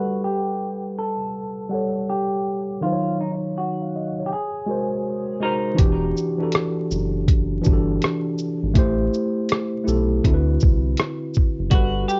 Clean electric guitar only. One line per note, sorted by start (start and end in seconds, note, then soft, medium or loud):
0.00 0.24 F#4 medium
0.24 0.98 G4 medium
0.99 2.05 A4 medium
2.10 2.82 G4 medium
2.83 3.17 F4 medium
3.21 3.30 D#4 medium
3.58 4.22 F#4 medium
4.26 4.31 G4 medium
4.33 5.42 G#4 medium
5.43 5.77 D#4 medium
5.43 5.52 A#4 medium
11.71 12.08 F#4 loud
12.08 12.20 G4 medium